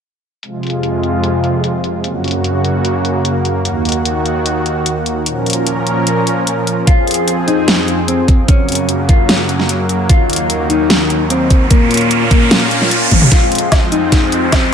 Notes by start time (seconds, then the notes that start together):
0.43 F2 C3 G#3 F4, closed hi-hat
0.63 closed hi-hat
0.67 closed hi-hat
0.70 closed hi-hat
0.83 closed hi-hat
1.03 closed hi-hat
1.24 closed hi-hat
1.44 closed hi-hat
1.64 closed hi-hat
1.84 closed hi-hat
2.04 F#2 C#3 A#3 F#4, closed hi-hat
2.24 closed hi-hat
2.28 closed hi-hat
2.31 closed hi-hat
2.44 closed hi-hat
2.65 closed hi-hat
2.85 closed hi-hat
3.05 closed hi-hat
3.25 closed hi-hat
3.45 closed hi-hat
3.65 D#2 D#3 F#4, closed hi-hat
3.85 closed hi-hat
3.89 closed hi-hat
3.92 closed hi-hat
4.05 closed hi-hat
4.26 closed hi-hat
4.46 closed hi-hat
4.66 closed hi-hat
4.86 closed hi-hat
5.06 closed hi-hat
5.26 A#2 F3 C#4 A#4, closed hi-hat
5.46 closed hi-hat
5.50 closed hi-hat
5.53 closed hi-hat
5.67 closed hi-hat
5.87 closed hi-hat
6.07 closed hi-hat
6.27 closed hi-hat
6.47 closed hi-hat
6.67 closed hi-hat
6.87 F2 C4 F4 G#4, kick, closed hi-hat
7.07 closed hi-hat
7.11 closed hi-hat
7.14 closed hi-hat
7.28 closed hi-hat
7.48 D#4, closed hi-hat
7.68 snare, closed hi-hat
7.88 closed hi-hat
8.08 C4, closed hi-hat
8.28 kick, closed hi-hat
8.48 F#2 C#3 F#3 A#3 C#4, kick, closed hi-hat
8.69 closed hi-hat
8.72 closed hi-hat
8.75 closed hi-hat
8.89 closed hi-hat
9.09 F4, kick, closed hi-hat
9.29 snare, closed hi-hat
9.49 closed hi-hat
9.59 snare
9.69 closed hi-hat
9.89 closed hi-hat
10.09 D#2 D#3 F4, kick, closed hi-hat, riser
10.30 closed hi-hat
10.33 closed hi-hat
10.36 closed hi-hat
10.50 closed hi-hat
10.70 D#4, closed hi-hat
10.90 snare, closed hi-hat
11.10 closed hi-hat
11.30 C4, closed hi-hat
11.50 kick, closed hi-hat
11.70 A#2 A#3 C#4 F4, kick, closed hi-hat
11.91 closed hi-hat
11.94 closed hi-hat
11.97 closed hi-hat
12.11 closed hi-hat
12.31 A#3, kick, closed hi-hat
12.51 snare, closed hi-hat
12.71 closed hi-hat
12.82 snare
12.91 closed hi-hat
13.11 kick, closed hi-hat, high tom
13.22 mid tom
13.32 F2 F3 G#3 C4 F4, kick, snare, closed hi-hat, riser
13.52 closed hi-hat
13.55 closed hi-hat
13.58 closed hi-hat
13.72 kick, snare, closed hi-hat, low woodblock
13.92 D#4, closed hi-hat
14.12 kick, snare, closed hi-hat
14.32 closed hi-hat
14.52 C4, kick, snare, closed hi-hat, low woodblock